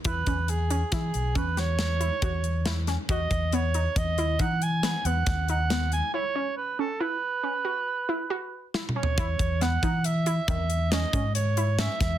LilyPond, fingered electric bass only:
\new Staff \with { instrumentName = "Fingered electric bass" } { \clef bass \time 7/4 \key e \major \tempo 4 = 138 e,8 e,4. e8 b,,8 e,2 e,2 | e,8 e,4. e,8 dis,8 e4. e,8 dis,2 | r1. r4 | e,8 e,4 e4. e,4. gis,2 e,8 | }